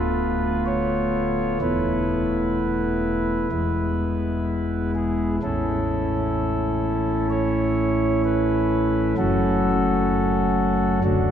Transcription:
0.00 1.58 D1 medium
0.00 1.58 D2 medium
0.00 1.58 A3 soft
0.00 1.58 B3 soft
0.00 1.58 F4 soft
0.00 0.64 B4 medium
0.66 1.58 C#5 medium
1.61 3.47 E1 soft
1.61 3.48 E2 soft
1.61 3.48 A3 soft
1.61 3.48 B3 soft
1.61 3.47 E4 soft
1.61 4.92 B4 medium
3.51 5.39 E1 soft
3.51 5.39 E2 soft
3.51 5.39 G#3 soft
3.51 5.39 B3 soft
3.51 5.39 E4 soft
4.95 5.36 G#4 medium
5.43 9.14 A1 medium
5.43 9.14 A2 medium
5.43 9.14 A3 soft
5.43 9.14 C#4 soft
5.43 9.14 E4 soft
5.43 7.27 A4 medium
7.30 8.22 C#5 medium
8.25 9.15 B4 medium
9.17 11.00 F#1 medium
9.17 11.00 F#2 medium
9.17 10.99 A3 soft
9.17 11.00 C#4 soft
9.17 11.00 F#4 soft
9.17 11.00 A4 loud
11.04 11.31 D1 medium
11.04 11.31 D2 medium
11.04 11.31 A3 soft
11.04 11.31 D4 soft
11.04 11.31 F#4 medium

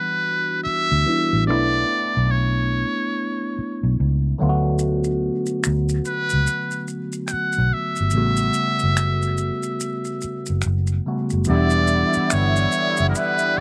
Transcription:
0.00 1.01 E3 medium
0.00 1.02 G3 medium
0.00 1.02 B3 medium
0.00 1.03 D4 medium
0.00 1.03 F#4 medium
0.00 0.63 B4 medium
0.64 1.43 E5 loud
0.64 muted fingered electric bass stroke soft
0.92 1.04 D2 medium
1.06 1.47 E3 soft
1.06 1.48 G3 soft
1.06 1.48 B3 soft
1.06 1.46 D4 soft
1.06 1.49 E4 soft
1.33 1.50 A1 medium
1.47 1.83 B1 medium
1.47 4.35 A3 soft
1.47 4.36 B3 medium
1.47 4.35 D4 medium
1.47 2.32 D5 medium
1.51 4.37 E4 medium
2.17 2.83 B1 medium
2.31 3.97 C#5 medium
3.59 muted fingered electric bass stroke soft
3.83 3.96 B1 medium
4.00 4.33 C#2 medium
4.38 5.29 D2 medium
4.38 7.68 D3 medium
4.38 7.68 F#3 medium
4.38 7.69 A3 medium
4.38 7.69 B3 medium
4.43 4.49 F4 medium
4.49 7.73 F#4 medium
4.79 maracas medium
5.04 maracas soft
5.46 maracas soft
5.64 5.99 D2 medium
5.64 finger snap medium
5.64 maracas medium
5.89 maracas soft
6.05 6.85 B4 loud
6.05 maracas soft
6.30 6.46 C#2 medium
6.30 maracas soft
6.47 maracas medium
6.71 maracas soft
6.88 maracas soft
7.13 maracas soft
7.27 7.33 G5 medium
7.27 finger snap soft
7.27 maracas soft
7.32 7.75 F#5 loud
7.32 muted fingered electric bass stroke soft
7.53 maracas soft
7.58 7.71 B1 medium
7.73 10.64 E5 medium
7.96 maracas soft
8.00 8.16 G1 medium
8.10 11.01 C#3 medium
8.10 11.02 G3 medium
8.10 maracas soft
8.15 8.49 A1 medium
8.15 11.02 A3 medium
8.15 11.03 B3 medium
8.15 11.03 F#4 medium
8.37 maracas soft
8.53 maracas soft
8.79 maracas soft
8.83 9.50 F#1 medium
8.97 finger snap medium
8.97 maracas medium
9.22 maracas soft
9.38 maracas soft
9.63 maracas soft
9.80 maracas medium
10.05 maracas soft
10.21 muted fingered electric bass stroke soft
10.21 maracas soft
10.46 10.62 F#1 medium
10.46 maracas soft
10.62 finger snap soft
10.62 maracas soft
10.66 10.99 F#1 medium
10.87 maracas soft
11.06 11.47 C#3 soft
11.06 11.46 G3 soft
11.06 11.48 A3 soft
11.06 11.47 B3 soft
11.06 11.49 F#4 medium
11.30 11.45 F#1 medium
11.30 maracas soft
11.44 13.60 D3 medium
11.44 13.60 E3 medium
11.44 13.60 G3 medium
11.44 13.60 B3 medium
11.44 13.60 E4 medium
11.44 maracas medium
11.49 12.03 E1 loud
11.49 13.60 B3 medium
11.49 13.60 D4 medium
11.49 13.60 G4 medium
11.49 12.35 D5 loud
11.70 maracas soft
11.87 maracas soft
12.13 muted fingered electric bass stroke soft
12.13 maracas soft
12.30 12.66 G1 medium
12.30 13.09 C#5 medium
12.30 finger snap medium
12.30 maracas medium
12.56 maracas soft
12.72 maracas soft
12.97 13.12 F#1 medium
12.97 maracas soft
13.09 13.18 A#4 medium
13.15 13.59 B4 medium
13.15 maracas medium
13.39 maracas soft

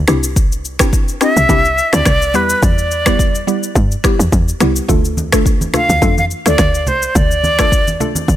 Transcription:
0.08 1.02 C2 loud
0.08 0.34 C4 medium
0.08 0.34 D4 medium
0.08 0.34 E4 medium
0.08 0.34 G4 medium
0.08 finger snap medium
0.08 cross-stick loud
0.08 shaker medium
0.23 shaker medium
0.36 kick loud
0.36 shaker medium
0.52 shaker medium
0.65 shaker medium
0.79 1.18 C4 medium
0.79 1.18 D4 medium
0.79 1.18 E4 medium
0.79 1.18 G4 medium
0.79 finger snap medium
0.79 kick medium
0.79 cross-stick loud
0.79 shaker medium
0.93 kick loud
0.93 shaker medium
1.08 shaker medium
1.21 1.47 C4 medium
1.21 1.47 D4 medium
1.21 1.48 E4 medium
1.21 1.48 G4 medium
1.21 1.96 E5 loud
1.21 finger snap medium
1.21 cross-stick medium
1.21 shaker medium
1.37 1.46 C2 medium
1.37 shaker medium
1.49 1.81 C2 loud
1.49 1.66 C4 medium
1.49 1.66 D4 medium
1.49 1.66 E4 medium
1.49 1.66 G4 loud
1.49 kick loud
1.49 shaker medium
1.65 shaker soft
1.78 shaker medium
1.93 2.03 D2 loud
1.93 2.07 C4 medium
1.93 2.07 D4 medium
1.93 2.07 E4 medium
1.93 2.07 G4 medium
1.93 2.37 D5 loud
1.93 finger snap medium
1.93 cross-stick medium
1.93 shaker medium
2.05 2.36 C2 medium
2.05 finger snap medium
2.05 kick medium
2.05 cross-stick loud
2.05 shaker medium
2.22 shaker medium
2.34 2.55 E2 loud
2.34 3.00 G3 medium
2.34 3.00 B3 medium
2.34 3.00 E4 medium
2.34 3.00 G4 loud
2.34 2.65 B4 medium
2.34 shaker medium
2.49 shaker medium
2.63 3.43 E2 loud
2.63 3.76 D5 loud
2.63 kick loud
2.63 shaker medium
2.78 shaker medium
2.91 shaker medium
3.06 3.44 G3 medium
3.06 3.44 B3 medium
3.06 3.44 E4 medium
3.06 3.45 G4 medium
3.06 finger snap medium
3.06 kick medium
3.06 cross-stick loud
3.06 shaker medium
3.19 kick loud
3.19 shaker medium
3.35 shaker medium
3.47 3.74 G3 medium
3.47 3.74 B3 medium
3.47 3.74 E4 medium
3.47 3.74 G4 medium
3.47 shaker medium
3.63 shaker medium
3.75 3.96 G2 loud
3.75 kick loud
3.75 shaker medium
3.91 shaker medium
4.04 4.21 G3 medium
4.04 4.21 B3 medium
4.04 4.21 E4 medium
4.04 4.21 G4 medium
4.04 finger snap medium
4.04 kick loud
4.04 cross-stick loud
4.04 shaker medium
4.19 4.29 E2 loud
4.19 shaker medium
4.32 4.53 E2 loud
4.32 kick medium
4.32 shaker medium
4.48 shaker medium
4.60 4.81 C2 medium
4.60 4.87 G3 medium
4.60 4.87 B3 medium
4.60 4.87 E4 medium
4.60 4.87 G4 medium
4.60 finger snap medium
4.60 cross-stick medium
4.60 shaker medium
4.76 shaker medium
4.88 5.85 D2 loud
4.88 5.29 A3 medium
4.88 5.29 D4 medium
4.88 5.29 F4 medium
4.88 5.29 A4 loud
4.88 kick loud
4.88 low conga medium
4.88 shaker medium
5.05 shaker medium
5.17 high conga medium
5.17 shaker medium
5.32 5.71 A3 medium
5.32 5.71 D4 medium
5.32 5.71 F4 medium
5.32 5.71 A4 medium
5.32 finger snap medium
5.32 kick medium
5.32 cross-stick loud
5.32 shaker medium
5.46 kick loud
5.46 shaker medium
5.61 high conga medium
5.61 shaker medium
5.74 6.00 A3 medium
5.74 6.00 D4 medium
5.74 6.00 F4 medium
5.74 6.00 A4 medium
5.74 6.15 F5 loud
5.74 finger snap medium
5.74 cross-stick medium
5.74 low conga medium
5.74 shaker medium
5.89 5.99 D2 medium
5.89 high conga medium
5.89 shaker medium
6.02 6.34 F2 loud
6.02 6.18 A3 medium
6.02 6.19 D4 medium
6.02 6.19 F4 medium
6.02 6.19 A4 loud
6.02 kick loud
6.02 shaker medium
6.18 6.25 F5 loud
6.18 high conga medium
6.18 shaker medium
6.31 shaker medium
6.46 6.55 D2 medium
6.46 6.60 A3 medium
6.46 6.60 D4 medium
6.46 6.60 F4 medium
6.46 6.60 A4 medium
6.46 6.89 D5 loud
6.46 finger snap medium
6.46 cross-stick medium
6.46 shaker medium
6.58 6.88 D2 loud
6.58 finger snap medium
6.58 kick medium
6.58 cross-stick loud
6.58 shaker medium
6.75 shaker medium
6.87 7.08 C2 medium
6.87 7.18 C5 medium
6.87 low conga medium
6.87 shaker medium
7.02 shaker medium
7.15 7.96 D2 loud
7.15 8.29 D5 loud
7.15 kick loud
7.15 low conga medium
7.15 shaker medium
7.31 shaker medium
7.44 high conga medium
7.44 shaker medium
7.59 7.97 A3 medium
7.59 7.97 D4 medium
7.59 7.97 F4 medium
7.59 7.97 A4 medium
7.59 finger snap medium
7.59 kick medium
7.59 cross-stick loud
7.59 shaker medium
7.72 kick loud
7.72 shaker medium
7.88 high conga medium
7.88 shaker medium
8.00 8.27 A3 medium
8.00 8.27 D4 medium
8.00 8.27 F4 medium
8.00 8.27 A4 medium
8.00 low conga medium
8.00 shaker medium
8.15 high conga medium
8.15 shaker medium
8.28 8.36 D2 loud
8.28 kick loud
8.28 shaker medium

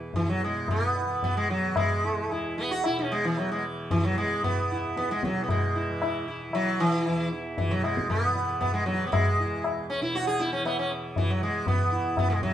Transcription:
0.00 2.26 E2 soft
0.00 0.45 B2 medium
0.00 1.06 E3 medium
0.14 0.29 E3 medium
0.14 tabla tin medium
0.14 tabla ge medium
0.29 0.42 F#3 medium
0.44 2.88 B2 soft
0.44 0.70 G#3 medium
0.68 1.23 B3 medium
0.68 tabla na medium
0.68 tabla ge medium
0.95 tabla te medium
1.06 1.68 E3 medium
1.23 1.37 B3 medium
1.23 tabla tin medium
1.23 tabla ge medium
1.37 1.49 G#3 medium
1.50 1.76 F#3 medium
1.68 3.50 E3 soft
1.76 2.59 G#3 medium
1.76 tabla na medium
1.76 tabla ge medium
2.04 2.28 E4 soft
2.27 4.70 E2 medium
2.27 tabla na medium
2.31 2.56 E4 soft
2.58 2.70 B3 medium
2.71 2.84 F#4 medium
2.84 2.98 E4 medium
2.84 tabla na medium
2.88 5.31 B2 soft
2.99 3.12 C#4 medium
3.12 3.25 G#3 medium
3.25 3.38 E3 medium
3.37 3.50 F#3 medium
3.37 tabla na medium
3.50 4.10 E3 medium
3.50 3.63 G#3 medium
3.91 4.04 E3 medium
3.91 tabla tin medium
3.91 tabla ge medium
4.05 4.17 F#3 medium
4.10 5.90 E3 medium
4.18 4.44 G#3 medium
4.44 4.96 B3 medium
4.44 tabla na medium
4.44 tabla ge medium
4.71 7.09 E2 medium
4.71 4.95 E4 soft
4.97 5.10 B3 medium
4.97 tabla te medium
5.10 5.24 G#3 medium
5.10 tabla te medium
5.23 5.43 F#3 medium
5.23 tabla ke medium
5.31 7.67 B2 medium
5.36 tabla te medium
5.43 5.50 B3 medium
5.49 6.25 G#3 medium
5.49 tabla na medium
5.49 tabla ge medium
5.75 6.00 E4 soft
5.90 6.50 E3 soft
6.02 6.26 E4 soft
6.02 tabla na medium
6.28 6.52 E4 soft
6.50 8.27 E3 medium
6.50 tabla na medium
6.55 6.81 F#3 medium
6.80 7.29 E3 medium
7.06 9.44 E2 soft
7.06 7.31 E4 soft
7.06 tabla na medium
7.32 7.56 E4 soft
7.58 7.72 E3 medium
7.58 tabla tin medium
7.58 tabla ge medium
7.67 10.01 B2 medium
7.67 7.84 F#3 medium
7.84 8.09 G#3 medium
7.84 tabla na medium
7.97 tabla ke soft
8.10 8.59 B3 medium
8.10 tabla na medium
8.10 tabla ge medium
8.27 8.85 E3 soft
8.35 tabla te medium
8.61 8.73 B3 medium
8.61 tabla na medium
8.61 tabla ge medium
8.74 8.86 G#3 medium
8.85 10.59 E3 medium
8.85 9.06 F#3 medium
8.85 tabla te medium
9.07 9.12 B3 medium
9.12 9.85 G#3 medium
9.12 tabla na medium
9.12 tabla ge medium
9.39 9.63 E4 soft
9.45 11.74 E2 soft
9.64 tabla na medium
9.90 10.02 C#4 medium
10.01 12.31 B2 medium
10.01 10.15 E4 medium
10.15 10.27 F#4 medium
10.15 tabla te medium
10.27 10.41 G#4 medium
10.40 10.52 E4 medium
10.40 tabla te medium
10.53 10.65 C#4 medium
10.59 11.16 E3 medium
10.65 10.78 B3 medium
10.65 tabla na medium
10.79 10.90 C#4 medium
10.91 tabla na soft
11.16 12.54 E3 soft
11.16 11.30 E3 medium
11.16 tabla tin medium
11.16 tabla ge medium
11.30 11.42 F#3 medium
11.43 11.67 G#3 medium
11.67 12.18 B3 medium
11.67 tabla na medium
11.67 tabla ge medium
11.74 12.54 E2 soft
11.92 12.15 E4 soft
12.17 12.29 B3 medium
12.17 tabla na medium
12.17 tabla ge medium
12.30 12.54 B2 soft
12.30 12.42 G#3 medium
12.42 12.54 F#3 medium
12.42 tabla ge medium

